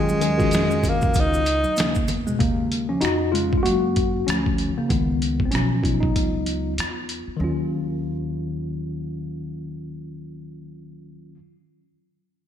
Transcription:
Already playing: D#2 D#3 F#3 G#3 C#4 F4
0.09 high conga, maracas
0.20 D#3 F#3 C#4 G#4, closed hi-hat, maracas
0.37 D#3 C#4 F4 F#4, kick, maracas
0.42 snare
0.51 F2, snare, closed hi-hat, maracas
0.71 maracas
0.84 kick, closed hi-hat, low conga, maracas
0.89 A#3
1.01 kick, maracas
1.14 C#2, kick, closed hi-hat, maracas
1.20 D#4
1.34 maracas
1.46 closed hi-hat, maracas
1.64 muted upright bass stroke, high conga, maracas
1.77 D#2 C#3 A#3, snare, closed hi-hat, maracas
1.95 kick, maracas
2.08 E2, closed hi-hat, low conga, maracas
2.27 B2 G#3, maracas
2.39 D#2 C#3 A#3, kick, closed hi-hat
2.72 closed hi-hat
2.89 F3 C#4
3.01 F2 D#4 F#4, closed hi-hat
3.05 cross-stick
3.32 C#3 G#3 C#4 F4, closed hi-hat
3.53 kick
3.57 F4
3.63 F#2 A#3 F#4, closed hi-hat
3.96 kick, closed hi-hat
4.27 D2 F3 C#4, cross-stick, closed hi-hat
4.46 kick
4.58 closed hi-hat
4.78 C#3 A#3, muted upright bass stroke
4.89 C#2 D#3 B3, kick, closed hi-hat
5.22 closed hi-hat
5.40 kick
5.45 C4
5.51 B1 F3 C#4, closed hi-hat
5.55 cross-stick
5.83 B3 D#4 F4, kick, closed hi-hat
6.00 F#3 D#4, kick
6.16 C#2, kick, closed hi-hat
6.46 closed hi-hat
6.78 E2, cross-stick, closed hi-hat
7.09 closed hi-hat
7.28 muted upright bass stroke
7.36 D#2 D#3 F#3
7.41 C#4 F4

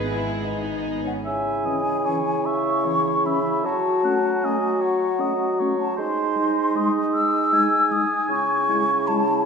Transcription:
Already playing: G#1 G#3 B3 G#4 B4
0.05 E4
0.45 D#4
1.06 C#4 F#5
1.25 C#3 E4 E5 G#5
1.65 E3 C#4 D#5
2.06 E3 C#4 C#5
2.45 E5 C#6
2.85 E3 C#4 C#5
3.24 E3 C#4 E5 B5
3.64 F#3 F#4 C#5 A5
4.04 A3 C#4 F#5
4.43 A3 C#4 D#5 G#5
4.81 C#5 F#5
5.19 A3 C#4 D#5
5.60 A3 C#4 C#5
5.80 A5
5.97 G#3 D#4 C5 C6
6.36 G#3 D#4
6.75 G#3 D#4 D#5
7.13 E6
7.51 G#3 D#4 G#5
7.91 G#3 D#4 D#6
8.29 C#3 E4 C#6
8.69 G#3 E4
9.08 G#3 E4 A5

